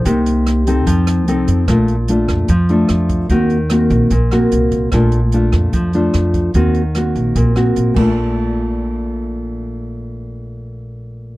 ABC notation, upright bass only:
X:1
M:4/4
L:1/8
Q:1/4=148
K:Bb
V:1 name="Upright bass" clef=bass
C,,4 F,,2 C,, F,, | B,,,3 F,, F,,2 F,,2 | E,,3 B,,, B,,,2 C,,2 | B,,,3 F,, F,,2 F,,2 |
E,,3 B,,, B,,,2 B,,, B,,,- | B,,,8- | B,,,8 |]